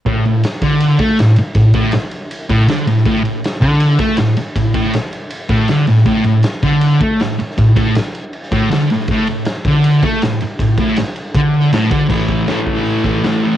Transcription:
0.06 A2, kick, ride
0.25 A2, ride
0.43 snare, ride
0.62 D3, kick, ride
0.80 ride
0.99 A3, kick, ride
1.19 A2, snare, ride
1.36 muted distorted electric guitar stroke, ride
1.55 A2, kick, ride
1.74 A2, kick, ride
1.92 snare, ride
2.11 ride
2.31 ride
2.49 A2, kick, ride
2.68 D3, snare, ride
2.87 A2, ride
2.98 snare
3.05 A2, kick, ride
3.24 A2, ride
3.44 snare, ride
3.61 D3, kick, ride
3.80 ride
3.99 A3, kick, ride
4.17 A2, snare, ride
4.37 muted distorted electric guitar stroke, snare, ride
4.56 A2, kick, ride
4.74 A2, kick, ride
4.93 snare, ride
5.13 ride
5.30 ride
5.49 A2, kick, ride
5.68 D3, snare, ride
5.87 A2, snare, ride
5.97 snare
6.06 A2, kick, ride
6.24 A2, ride
6.43 snare, ride
6.63 D3, kick, ride
6.81 ride
7.00 A3, kick, ride
7.19 A2, snare, ride
7.38 muted distorted electric guitar stroke, ride
7.50 snare
7.58 A2, kick, ride
7.76 A2, kick, ride
7.95 snare, ride
8.15 ride
8.33 ride
8.52 A2, kick, ride
8.70 D3, snare, ride
8.90 A2, snare, ride
9.00 snare
9.07 A2, kick, ride
9.27 A2, ride
9.45 snare, ride
9.65 D3, kick, ride
9.84 ride
10.03 A3, kick, ride
10.22 A2, snare, ride
10.40 muted distorted electric guitar stroke, ride
10.59 A2, kick, ride
10.78 A2, kick, ride
10.96 snare, ride
11.16 ride
11.35 D3, kick, ride
11.54 ride
11.72 A2, snare, ride
11.91 D3, kick, ride
12.09 A2 E3 A3, kick, crash
12.29 kick
12.47 A2 E3, snare, open hi-hat
12.51 A3
12.67 kick
12.85 open hi-hat
13.04 A3, kick
13.08 E3
13.23 A2 E3 A3, snare, open hi-hat
13.44 E3 A3

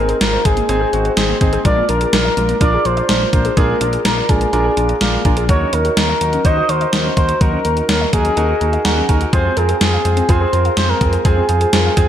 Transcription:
Already playing: G#1 C4 D#4 G#4 A#4
0.09 G#4, closed hi-hat
0.21 G#1 C4 D#4 F4 A#4, snare, closed hi-hat
0.33 C5
0.45 G#1 G#3 C4 D#4 G#4, kick, closed hi-hat
0.57 A#3, closed hi-hat
0.69 G#1 C4 D#4 G#4, closed hi-hat
0.81 G#4
0.93 G#1 C4 D#4 F#4, closed hi-hat
1.05 C5, closed hi-hat
1.17 G#1 G#3 C4 D#4 G#4, snare, closed hi-hat
1.29 A#3
1.41 G#1 C4 D#4 G#4, kick, closed hi-hat
1.53 G#4, closed hi-hat
1.65 A#1 G#3 D4 F4 A#4 D5, kick, closed hi-hat
1.77 A#3
1.89 A#1 D4 F4 A#4, closed hi-hat
2.01 G#4, closed hi-hat
2.13 A#1 D4 F4 A#4, snare, closed hi-hat
2.25 D5
2.37 A#1 G#3 D4 F4 A#4, closed hi-hat
2.49 A#3, closed hi-hat
2.61 A#1 D4 F4 A#4 D5, kick, closed hi-hat
2.73 G#4
2.85 A#1 D4 F4 A#4 C5, closed hi-hat
2.97 D5, closed hi-hat
3.09 A#1 G#3 D4 F4 A#4, snare, closed hi-hat
3.21 A#3
3.33 A#1 D4 F4 A#4 C5, kick, closed hi-hat
3.45 G#4, closed hi-hat
3.57 A#1 G#3 D4 F4 G#4 A#4, kick, closed hi-hat
3.69 A#3
3.81 A#1 D4 F4 A#4, closed hi-hat
3.93 G#4, closed hi-hat
4.05 A#1 D4 F4 A#4, snare, closed hi-hat
4.17 D5
4.29 A#1 G#3 D4 F4 G#4 A#4, kick, closed hi-hat
4.41 A#3, closed hi-hat
4.53 A#1 D4 F4 A#4, closed hi-hat
4.65 G#4
4.77 A#1 D4 F4 A#4, closed hi-hat
4.89 D5, closed hi-hat
5.01 A#1 G#3 D4 F4 A#4 F5, snare, closed hi-hat
5.13 A#3
5.25 A#1 D4 F4 A#4 G#5, kick, closed hi-hat
5.37 G#4, closed hi-hat
5.49 D#2 F#3 D#4 F#4 A#4 C#5, kick, closed hi-hat
5.61 C#4
5.73 D#2 D#4 F#4 A#4, closed hi-hat
5.85 F#4, closed hi-hat
5.97 D#2 D#4 F#4 A#4 C#5, snare, closed hi-hat
6.09 D#5
6.21 D#2 F#3 D#4 F#4 A#4, closed hi-hat
6.33 C#4, closed hi-hat
6.45 D#2 D#4 F#4 C5 D#5, kick, closed hi-hat
6.57 F#4
6.69 D#2 D#4 F#4 A#4 C5, closed hi-hat
6.81 D#5, closed hi-hat
6.93 D#2 F#3 D#4 F#4 A#4, snare, closed hi-hat
7.05 C#4
7.17 D#2 D#4 F#4 A#4 C5, kick, closed hi-hat
7.29 F#4, closed hi-hat
7.41 D#2 F#3 D#4 F#4 A#4, kick, closed hi-hat
7.53 C#4
7.65 D#2 D#4 F#4 A#4, closed hi-hat
7.77 F#4, closed hi-hat
7.89 D#2 D#4 F#4 A#4 C#5, snare, closed hi-hat
8.01 D#5
8.13 D#2 F#3 D#4 F#4 G#4 A#4, kick, closed hi-hat
8.25 C#4, closed hi-hat
8.37 D#2 D#4 F#4 A#4, closed hi-hat
8.49 F#4
8.61 D#2 D#4 F#4 A#4, closed hi-hat
8.73 D#5, closed hi-hat
8.85 D#2 F#3 D#4 F#4 A#4 F#5, snare, closed hi-hat
8.97 C#4
9.09 D#2 D#4 F#4 A#4 G#5, kick, closed hi-hat
9.21 F#4, closed hi-hat
9.33 F2 G#3 C4 F4 G#4 C5, kick, closed hi-hat
9.45 C4
9.57 F2 C4 F4 G#4 A#4, closed hi-hat
9.69 G#4, closed hi-hat
9.81 F2 C4 F4 G#4 C5, snare, closed hi-hat
9.93 F5
10.05 F2 G#3 C4 F4 G#4, closed hi-hat
10.17 C4, closed hi-hat
10.29 F2 C4 F4 G#4 C5, kick, closed hi-hat
10.41 G#4
10.53 F2 C4 F4 A#4, closed hi-hat
10.65 F5, closed hi-hat
10.77 F2 G#3 C4 F4 G#4 C5, snare, closed hi-hat
10.89 C4 A#4
11.01 F2 C4 F4 G#4, kick, closed hi-hat
11.13 G#4, closed hi-hat
11.25 F2 G#3 C4 F4 G#4, kick, closed hi-hat
11.37 C4
11.49 F2 C4 F4 G#4, closed hi-hat
11.61 G#4, closed hi-hat
11.73 F2 C4 F4 A#4 C5, snare, closed hi-hat
11.85 F5
11.97 F2 G#3 C4 F4 G#4, kick, closed hi-hat

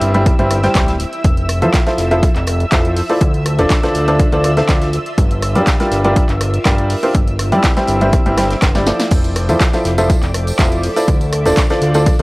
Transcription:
Already playing: G3 C4 E4 G4 C5 E5 G5 E6
0.01 G1, closed hi-hat, open hi-hat
0.14 G3 C4 E4 G4 C5 E5, closed hi-hat
0.26 kick, cross-stick, closed hi-hat
0.39 G1 G3 C4 E4 G4 C5 E5, closed hi-hat
0.51 cross-stick, closed hi-hat, open hi-hat
0.63 G3 C4 E4 G4 C5 G5, snare, closed hi-hat
0.75 D1 G3 C4 E4 G4 C5 E5, kick, snare, clap, closed hi-hat
0.88 snare, closed hi-hat
1.00 closed hi-hat, open hi-hat
1.13 closed hi-hat
1.24 F1 F4, kick, closed hi-hat
1.37 closed hi-hat
1.45 A5, cross-stick, open hi-hat
1.50 closed hi-hat
1.62 F2 F3 E4 F4 A4 C5 E5, closed hi-hat
1.74 kick, snare, clap, closed hi-hat
1.87 F3 E4 F4 A4 C5 E5, snare, closed hi-hat
1.98 F1, snare, closed hi-hat, open hi-hat
2.11 F3 E4 F4 A4 C5 E5, closed hi-hat
2.23 kick, closed hi-hat
2.36 F1, clap, closed hi-hat
2.47 cross-stick, closed hi-hat, open hi-hat
2.60 closed hi-hat
2.71 F1 F3 E4 F4 A4 C5 E5, kick, snare, clap, closed hi-hat
2.85 closed hi-hat
2.97 open hi-hat
3.10 E4 F4 A4 C5 D5, closed hi-hat
3.21 D2, kick, closed hi-hat
3.34 D5, closed hi-hat
3.46 cross-stick, closed hi-hat, open hi-hat
3.59 D1 D3 D4 F4 A4 C5 D5, closed hi-hat
3.70 kick, snare, clap, closed hi-hat
3.83 D3 D4 F4 A4 C5 D5, snare, closed hi-hat
3.95 D2, closed hi-hat, open hi-hat
4.00 C6
4.08 D3 D4 F4 A4 C5 D5, closed hi-hat
4.20 kick, cross-stick, closed hi-hat
4.32 D2 D3 D4 F4 A4 C5 D5, closed hi-hat
4.44 cross-stick, closed hi-hat, open hi-hat
4.57 D3 D4 F4 A4 C5 E5, snare, closed hi-hat
4.69 D2 D3 D4 F4 A4 C5 D5, kick, snare, clap, closed hi-hat
4.82 snare, closed hi-hat
4.93 closed hi-hat, open hi-hat
5.06 closed hi-hat
5.18 G1, kick, closed hi-hat
5.31 closed hi-hat
5.38 A#4
5.42 cross-stick, closed hi-hat, open hi-hat
5.55 G2 G3 D4 F4 G4 A#4 D5, closed hi-hat
5.67 kick, snare, clap, closed hi-hat
5.74 G5
5.80 G3 D4 F4 G4 A#4 D5, snare, closed hi-hat
5.91 G1, snare, closed hi-hat, open hi-hat
6.04 G3 D4 F4 G4 A#4 D5, closed hi-hat
6.16 kick, closed hi-hat
6.29 G1, clap, closed hi-hat
6.41 cross-stick, closed hi-hat, open hi-hat
6.54 closed hi-hat
6.65 G1 G3 D4 F4 G4 A#4 D5, kick, snare, clap, closed hi-hat
6.78 closed hi-hat
6.90 open hi-hat
7.03 D4 F4 G4 A#4 C5, closed hi-hat
7.14 G1 E4, kick, closed hi-hat
7.28 closed hi-hat
7.39 cross-stick, closed hi-hat, open hi-hat
7.52 G2 G3 C4 E4 G4 C5 D5, closed hi-hat
7.64 kick, snare, clap, closed hi-hat
7.77 G3 C4 E4 G4 C5 E5, snare, closed hi-hat
7.83 C5
7.88 G1, closed hi-hat, open hi-hat
8.01 G3 C4 E4 G4 C5 E5, closed hi-hat
8.13 kick, cross-stick, closed hi-hat
8.26 G1 G3 C4 E4 G4 C5 E5, closed hi-hat
8.38 G3 C4 E4 G4 C5 G5, cross-stick, snare, closed hi-hat, open hi-hat
8.51 snare, closed hi-hat
8.62 G1, kick, snare, clap, closed hi-hat
8.75 G3 C4 E4 G4 C5 D5, snare, closed hi-hat
8.86 F3 E4 F4 A4 C5 D5, snare, closed hi-hat, open hi-hat
8.99 snare, closed hi-hat
9.11 F1 A4 D5 D6, kick, closed hi-hat, tambourine, crash
9.24 closed hi-hat, tambourine
9.34 E5, cross-stick, closed hi-hat, open hi-hat
9.49 F2 F3 E4 F4 A4 C5 E5, closed hi-hat, tambourine
9.60 kick, snare, clap, closed hi-hat, tambourine
9.73 F3 E4 F4 A4 C5 E5, snare, closed hi-hat, tambourine
9.85 F1, snare, closed hi-hat, open hi-hat
9.98 F3 E4 F4 A4 C5 E5 A5, closed hi-hat, tambourine
10.10 kick, closed hi-hat, tambourine
10.22 F1, clap, closed hi-hat, tambourine
10.34 cross-stick, closed hi-hat, open hi-hat
10.47 closed hi-hat, tambourine
10.59 F1 F3 E4 F4 A4 C5 E5, kick, snare, clap, closed hi-hat, tambourine
10.72 closed hi-hat, tambourine
10.83 open hi-hat
10.96 E4 F4 A4 C5 D5, closed hi-hat, tambourine
11.08 D2, kick, closed hi-hat, tambourine
11.21 closed hi-hat, tambourine
11.33 cross-stick, closed hi-hat, open hi-hat
11.46 D1 D3 D4 F4 A4 C5 D5, closed hi-hat, tambourine
11.57 kick, snare, clap, closed hi-hat, tambourine
11.65 D5
11.70 D3 D4 F4 A4 C5 D5, snare, closed hi-hat, tambourine
11.82 D2, closed hi-hat, open hi-hat
11.94 D3 D4 F4 A4 C5 D5, closed hi-hat, tambourine
12.06 kick, cross-stick, closed hi-hat, tambourine

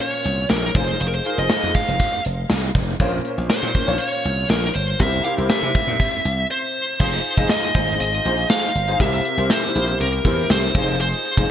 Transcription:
Already playing: A#2 C#4 F4 A#4 C5 C#5
0.00 C#5, closed hi-hat
0.24 C2, closed hi-hat
0.50 A#1 A#4, snare, closed hi-hat
0.74 F1 D#4 F4 G#4 C5, kick, closed hi-hat
1.00 F1 C5, closed hi-hat
1.08 A#4
1.15 C5
1.25 D#4 F4 G#4 A#4, closed hi-hat
1.37 F1 D#4 F4 G#4 C5 D#5
1.50 snare, closed hi-hat
1.64 F2
1.75 F5, kick, closed hi-hat
1.88 F1
2.00 kick, closed hi-hat
2.25 F1, closed hi-hat
2.50 C2, snare, closed hi-hat
2.75 F1, kick, closed hi-hat
3.00 A#1 A#2 C#4 F4 A#4 C5, kick, closed hi-hat
3.25 closed hi-hat
3.38 A#1
3.50 C5, snare, closed hi-hat
3.63 A#2
3.74 C#4 F4 A#4 C5, kick, closed hi-hat
3.87 A#1 C#4 F4 A#4 C#5
3.99 C#5, closed hi-hat
4.25 C2, closed hi-hat
4.50 A#1 A#4, snare, closed hi-hat
4.75 G1 C5, closed hi-hat
4.99 C2 C3 E4 G4 A#4 C5 E5, kick, closed hi-hat
5.24 E4 G4 A#4 C5 F5, closed hi-hat
5.37 C2 E4 G4 A#4 C5
5.50 E5, muted slap bass stroke, snare, closed hi-hat
5.63 C3
5.75 kick, closed hi-hat
5.87 A#2
6.00 kick, closed hi-hat
6.25 C2, closed hi-hat
6.51 C5
6.99 F1 D#4 F4 G#4 C5, kick, crash
7.12 closed hi-hat
7.24 closed hi-hat
7.37 F1 D#4 F4 G#4 D#5, kick, closed hi-hat
7.49 D#5, snare, tambourine
7.62 closed hi-hat
7.74 G#1 D#4 F4 G#4 C5, kick, closed hi-hat
7.88 closed hi-hat
8.00 G#1 D#5, closed hi-hat
8.12 closed hi-hat
8.24 A#1 D#4 F4 G#4 C5, closed hi-hat
8.38 closed hi-hat
8.50 F5, snare, tambourine
8.62 closed hi-hat
8.75 G1, closed hi-hat
8.87 D#4 F4 G#4 C5, closed hi-hat
9.00 C2 C3 E4 G4 A#4 C5 E5, kick, closed hi-hat
9.12 closed hi-hat
9.25 closed hi-hat
9.37 C2 E4 G4 A#4 C5, closed hi-hat
9.50 C5, snare, tambourine
9.63 closed hi-hat
9.75 A#1 E4 G4 A#4 C5, closed hi-hat
9.88 closed hi-hat
10.00 C2 A#4, closed hi-hat
10.13 closed hi-hat
10.25 E2 E4 G4 A#4 C5, kick, closed hi-hat
10.38 closed hi-hat
10.50 C2 C5, snare, tambourine
10.62 closed hi-hat
10.75 F1 D#4 F4 G#4 C5, kick, crash
10.88 closed hi-hat
11.00 C5, closed hi-hat
11.12 closed hi-hat
11.25 closed hi-hat
11.37 F1 D#4 F4 G#4 C5, kick, closed hi-hat

